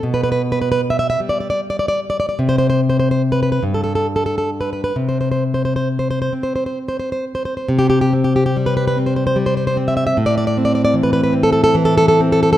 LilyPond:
\new Staff \with { instrumentName = "Nylon-string guitar" } { \time 6/8 \key c \major \tempo 4. = 48 << { r32 b'32 b'32 b'32 r32 b'32 b'32 b'32 r32 e''32 e''32 e''32 r32 d''32 d''32 d''32 r32 d''32 d''32 d''32 r32 d''32 d''32 d''32 | r32 c''32 c''32 c''32 r32 c''32 c''32 c''32 r32 b'32 b'32 b'32 r32 a'32 a'32 a'32 r32 a'32 a'32 a'32 r32 b'32 b'32 b'32 | r32 c''32 c''32 c''32 r32 c''32 c''32 c''32 r32 c''32 c''32 c''32 r32 c''32 c''32 c''32 r32 c''32 c''32 c''32 r32 c''32 c''32 c''32 | r32 g'32 g'32 g'32 r32 g'32 g'32 g'32 r32 b'32 b'32 b'32 r32 c''32 c''32 c''32 r32 c''32 c''32 c''32 r32 e''32 e''32 e''32 |
r32 d''32 d''32 d''32 r32 d''32 d''32 d''32 r32 b'32 b'32 b'32 r32 a'32 a'32 a'32 r32 a'32 a'32 a'32 r32 a'32 a'32 a'32 | } \\ { b,4. g4. | c4. g,4. | c4. c'4. | c8 c'8 g8 c'8 g8 c'8 |
a,8 c'8 e8 c'8 e8 c'8 | } >> }